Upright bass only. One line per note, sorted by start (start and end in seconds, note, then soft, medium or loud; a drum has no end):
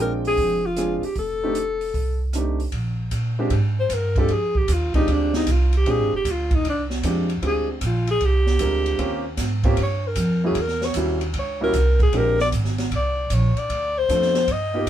0.00 0.34 A#1 medium
0.37 0.99 F1 medium
1.02 muted upright bass stroke soft
1.16 1.90 F1 medium
1.94 2.69 C2 medium
2.72 3.10 A#1 medium
3.11 3.49 A#2 medium
3.50 3.89 G#2 medium
3.89 4.28 G2 loud
4.29 4.67 F2 medium
4.68 4.92 D#2 medium
4.94 muted upright bass stroke soft
5.07 5.45 D2 medium
5.46 5.84 C2 loud
5.85 5.98 A#1 medium
5.98 6.11 G#1 medium
6.12 6.24 F1 medium
6.25 6.63 D2 medium
6.64 7.02 C2 medium
7.03 7.41 F2 loud
7.41 7.80 D2 medium
7.81 8.19 A#1 medium
8.20 8.58 C2 medium
8.59 8.97 D2 medium
8.98 9.37 D#2 medium
9.37 9.76 G#2 medium
9.77 10.15 G2 medium
10.16 10.54 F2 loud
10.55 10.93 E2 medium
10.94 11.32 D#2 medium
11.33 11.72 C#2 medium
11.73 12.11 C2 loud
12.12 12.50 A#1 medium
12.51 12.90 G#1 loud
12.91 13.29 C2 medium
13.30 13.54 A#1 loud
13.57 muted upright bass stroke soft
13.69 14.07 D2 medium
14.09 14.47 F2 medium
14.47 14.86 G2 medium
14.86 14.90 B2 medium